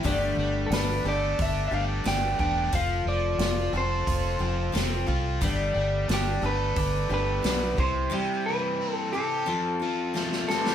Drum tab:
HH |o---o---o---o---|o---o---o---o---|o---o---o---o---|----------------|
SD |----o-------o---|----o-------o---|----o-------o---|------------oooo|
BD |o-------o-----o-|o-------o-----o-|o-------o-----o-|----------------|